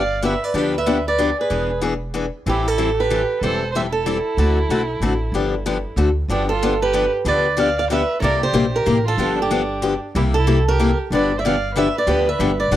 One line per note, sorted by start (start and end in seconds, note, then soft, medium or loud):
0.00 0.34 G1 medium
0.00 0.22 D5 medium
0.00 0.22 F5 medium
0.22 0.33 D3 medium
0.22 0.33 F3 medium
0.22 0.33 B3 medium
0.22 0.33 D4 medium
0.22 0.33 G4 medium
0.22 0.44 B4 medium
0.22 0.44 E5 medium
0.44 0.58 B4 medium
0.44 0.58 D5 medium
0.54 1.31 D2 medium
0.54 0.74 D3 medium
0.54 0.74 F3 medium
0.54 0.74 B3 medium
0.54 0.74 D4 medium
0.54 0.74 G4 medium
0.54 0.75 B4 medium
0.76 1.05 B4 medium
0.76 1.05 E5 medium
0.86 0.97 D3 medium
0.86 0.97 F3 medium
0.86 0.97 B3 medium
0.86 0.97 D4 medium
0.86 0.97 G4 medium
1.07 1.36 B4 medium
1.07 1.36 D5 medium
1.18 1.29 D3 medium
1.18 1.29 F3 medium
1.18 1.29 B3 medium
1.18 1.29 D4 medium
1.18 1.29 G4 medium
1.39 1.80 G#4 medium
1.39 1.81 B4 medium
1.50 2.27 E1 medium
1.50 1.70 E3 medium
1.50 1.70 B3 medium
1.50 1.70 D4 medium
1.50 1.70 G#4 medium
1.81 1.92 E3 medium
1.81 1.93 B3 medium
1.81 1.93 D4 medium
1.81 1.93 G#4 medium
2.14 2.25 E3 medium
2.14 2.25 B3 medium
2.14 2.25 D4 medium
2.14 2.25 G#4 medium
2.46 3.23 A1 medium
2.46 2.66 E3 medium
2.46 2.66 G3 medium
2.46 2.66 C4 medium
2.46 2.66 E4 medium
2.46 2.65 E4 medium
2.46 2.68 G4 medium
2.46 2.67 A4 medium
2.65 2.95 E4 medium
2.65 2.99 A4 medium
2.78 2.89 E3 medium
2.78 2.89 G3 medium
2.78 2.89 C4 medium
2.78 2.89 E4 medium
2.78 2.89 A4 medium
2.96 3.38 G4 medium
3.00 3.44 B4 medium
3.10 3.21 E3 medium
3.10 3.21 G3 medium
3.10 3.21 C4 medium
3.10 3.21 E4 medium
3.10 3.21 A4 medium
3.41 4.18 E1 medium
3.41 3.62 E3 medium
3.41 3.62 G3 medium
3.41 3.62 C4 medium
3.41 3.62 E4 medium
3.41 3.72 A4 medium
3.41 3.62 A4 medium
3.41 3.75 C5 medium
3.72 3.85 E3 medium
3.72 3.86 G3 medium
3.72 3.81 C5 medium
3.72 3.81 E5 medium
3.76 3.86 C4 medium
3.76 3.86 E4 medium
3.76 3.86 A4 medium
3.91 5.93 E4 medium
3.91 5.94 A4 medium
4.06 4.17 E3 medium
4.06 4.17 G3 medium
4.06 4.17 C4 medium
4.06 4.17 E4 medium
4.06 4.17 A4 medium
4.37 4.63 D2 medium
4.37 4.58 D3 medium
4.37 4.58 A3 medium
4.37 4.58 C4 medium
4.37 4.58 F#4 medium
4.37 4.58 A4 medium
4.69 4.97 B1 medium
4.69 4.81 D3 medium
4.69 4.81 A3 medium
4.69 4.81 C4 medium
4.69 4.81 F#4 medium
4.69 4.81 A4 medium
5.00 5.28 A1 medium
5.00 5.12 D3 medium
5.00 5.13 A3 medium
5.00 5.13 C4 medium
5.00 5.13 F#4 medium
5.00 5.13 A4 medium
5.32 5.84 G1 medium
5.32 5.53 D3 medium
5.32 5.54 F3 medium
5.32 5.54 B3 medium
5.32 5.54 D4 medium
5.32 5.54 G4 medium
5.66 5.76 D3 medium
5.66 5.76 F3 medium
5.66 5.77 B3 medium
5.66 5.77 D4 medium
5.66 5.77 G4 medium
5.96 6.22 D2 medium
5.96 6.08 D3 medium
5.96 6.08 A3 medium
5.96 6.08 C4 medium
5.96 6.08 F#4 medium
5.96 6.08 A4 medium
6.28 7.06 G1 medium
6.28 6.49 D3 medium
6.28 6.49 F3 medium
6.28 6.50 B3 medium
6.28 6.50 D4 medium
6.28 6.48 D4 medium
6.28 6.50 G4 medium
6.28 6.48 G4 medium
6.49 6.79 F4 medium
6.49 6.82 A4 medium
6.63 6.73 D3 medium
6.63 6.73 F3 medium
6.63 6.73 B3 medium
6.63 6.73 D4 loud
6.63 6.73 G4 medium
6.82 7.11 G4 medium
6.82 7.11 B4 medium
6.93 7.04 D3 medium
6.93 7.04 F3 medium
6.93 7.04 B3 medium
6.93 7.05 D4 medium
6.93 7.05 G4 medium
7.25 8.02 D2 medium
7.25 7.45 D3 medium
7.25 7.45 F3 medium
7.25 7.45 B3 medium
7.25 7.46 D4 medium
7.25 7.46 G4 medium
7.25 7.56 B4 medium
7.25 7.57 D5 medium
7.57 7.68 D3 medium
7.57 7.68 F3 medium
7.57 7.68 B3 medium
7.57 7.68 D4 medium
7.57 7.68 G4 medium
7.57 7.78 F5 medium
7.61 7.77 D5 medium
7.78 7.92 D5 medium
7.78 7.84 F5 medium
7.90 8.00 D3 medium
7.90 8.01 F3 medium
7.90 8.01 B3 medium
7.90 8.01 D4 medium
7.90 8.01 G4 medium
7.90 8.19 B4 medium
7.90 8.20 E5 medium
8.20 8.47 C2 medium
8.20 8.42 C3 medium
8.20 8.42 G3 medium
8.20 8.42 A#3 medium
8.20 8.42 E4 medium
8.20 8.22 A4 medium
8.20 8.39 A#4 medium
8.20 8.23 C#5 medium
8.24 8.42 G4 medium
8.24 8.40 D5 medium
8.40 8.70 G4 medium
8.40 8.75 C5 loud
8.53 8.81 A#1 medium
8.53 8.64 C3 medium
8.53 8.64 G3 medium
8.53 8.64 A#3 medium
8.53 8.65 E4 medium
8.53 8.65 G4 medium
8.73 9.03 G4 medium
8.73 9.04 A#4 medium
8.86 9.14 A1 medium
8.86 8.96 C3 medium
8.86 8.97 G3 medium
8.86 8.97 A#3 medium
8.86 8.97 E4 medium
8.86 8.97 G4 loud
9.05 9.35 F4 medium
9.05 9.39 A4 medium
9.17 9.95 G1 medium
9.17 9.38 D3 medium
9.17 9.38 F3 medium
9.17 9.38 B3 medium
9.17 9.38 D4 medium
9.17 9.38 G4 medium
9.37 9.97 D4 medium
9.42 10.00 G4 medium
9.51 9.61 D3 medium
9.51 9.61 F3 medium
9.51 9.61 B3 medium
9.51 9.61 D4 medium
9.51 9.61 G4 medium
9.82 9.93 D3 medium
9.82 9.93 F3 medium
9.82 9.93 B3 medium
9.82 9.93 D4 medium
9.82 9.93 G4 medium
10.15 10.92 C2 medium
10.15 10.34 C3 medium
10.15 10.35 G3 medium
10.15 10.35 A#3 medium
10.15 10.35 E4 medium
10.15 10.24 E4 medium
10.15 10.21 G4 medium
10.15 10.35 G4 medium
10.34 10.65 E4 medium
10.34 10.64 A4 medium
10.47 10.57 C3 medium
10.47 10.57 G3 medium
10.47 10.57 A#3 medium
10.47 10.58 E4 medium
10.47 10.58 G4 medium
10.68 10.96 G4 medium
10.68 10.97 A#4 medium
10.79 10.90 C3 medium
10.79 10.90 G3 medium
10.79 10.90 A#3 medium
10.79 10.90 E4 medium
10.79 10.90 G4 medium
11.10 11.88 G1 medium
11.10 11.31 D3 medium
11.10 11.31 F3 medium
11.10 11.31 B3 medium
11.10 11.31 D4 medium
11.10 11.31 G4 medium
11.10 11.36 B4 medium
11.10 11.37 D5 medium
11.37 11.42 C5 medium
11.37 11.44 E5 medium
11.42 11.54 D3 medium
11.42 11.55 F3 medium
11.42 11.55 B3 medium
11.42 11.55 D4 medium
11.42 11.55 G4 loud
11.42 11.72 D5 medium
11.46 11.75 F5 medium
11.74 11.86 D3 medium
11.74 11.86 F3 medium
11.74 11.86 B3 medium
11.74 11.86 D4 medium
11.74 11.87 G4 medium
11.74 11.92 B4 medium
11.74 11.96 E5 medium
11.95 12.07 B4 medium
11.95 12.09 D5 medium
12.07 12.32 D2 medium
12.07 12.27 D3 medium
12.07 12.27 F3 medium
12.07 12.27 B3 medium
12.07 12.27 D4 medium
12.07 12.27 G4 medium
12.07 12.26 G4 medium
12.07 12.27 B4 medium
12.29 12.57 B4 medium
12.29 12.59 E5 medium
12.39 12.67 G1 medium
12.39 12.50 D3 medium
12.39 12.50 F3 medium
12.39 12.50 B3 medium
12.39 12.50 D4 medium
12.39 12.50 G4 loud
12.60 12.75 B4 medium
12.60 12.74 D5 medium
12.71 12.76 F1 medium
12.71 12.76 D3 medium
12.71 12.76 F3 medium
12.71 12.76 B3 medium
12.71 12.76 D4 medium
12.71 12.76 G4 medium